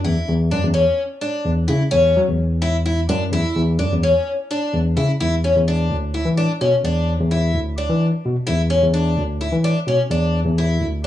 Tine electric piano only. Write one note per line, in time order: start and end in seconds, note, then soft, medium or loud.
0.05 0.16 E2 loud
0.29 0.50 E2 loud
0.52 0.63 F#2 medium
0.64 0.85 E2 medium
1.45 1.66 E2 medium
1.69 1.79 C#3 medium
1.93 2.13 E2 medium
2.17 2.27 F#3 medium
2.28 3.06 E2 medium
3.09 3.30 F#2 loud
3.32 3.43 E2 medium
3.56 3.77 E2 loud
3.80 3.91 F#2 medium
3.92 4.13 E2 medium
4.74 4.95 E2 medium
4.97 5.07 C#3 medium
5.21 5.52 E2 medium
5.56 5.87 E2 medium
5.91 6.22 D2 medium
6.25 6.46 E3 medium
6.61 6.71 B2 medium
6.84 7.16 E2 medium
7.20 7.51 E2 medium
7.54 7.86 D2 medium
7.89 8.10 E3 medium
8.25 8.35 B2 medium
8.48 8.79 E2 medium
8.83 9.14 E2 medium
9.17 9.49 D2 medium
9.52 9.73 E3 medium
9.87 9.98 B2 medium
10.10 10.42 E2 medium
10.45 10.77 E2 medium
10.80 11.07 D2 medium